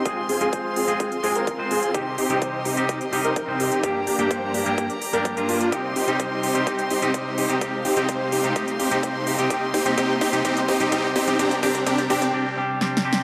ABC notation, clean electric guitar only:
X:1
M:4/4
L:1/16
Q:1/4=127
K:Cm
V:1 name="Clean electric guitar"
[A,CFA]2 z [A,CFA]4 [A,CFA]2 z [A,CFA]2 z [A,CFc]2 z | [C,G,CEG]2 z [C,G,CEG]4 [C,G,CEG]2 z [C,G,CEG]2 z [C,G,CEc]2 z | [G,,G,B,DG]2 z [G,,G,B,DG]4 [G,,G,B,DG]2 z2 [G,,G,B,DG]2 [G,,G,B,DF]3 | [C,G,CEG]2 z [C,G,CEG]4 [C,G,CEG] [C,G,CEG]2 z [C,G,CEG]4 [C,G,CEG] |
[C,G,CEG]2 z [C,G,CEG]4 [C,G,CEG] [C,G,CEG]2 z [C,G,CEG]4 [C,G,CEG] | [C,G,CEG]2 z [C,G,CEG] [C,G,CEG]2 z [C,G,CEG] [C,G,CEG]2 z [C,G,CEG] [C,G,CEG]2 z [C,G,CEG] | [C,G,CDG]2 [C,G,CDG]2 [C,G,CDG]2 [C,G,CDG]2 [C,G,CDG]2 [C,G,CDG]2 [C,G,CDG]2 [C,G,CDG]2 |]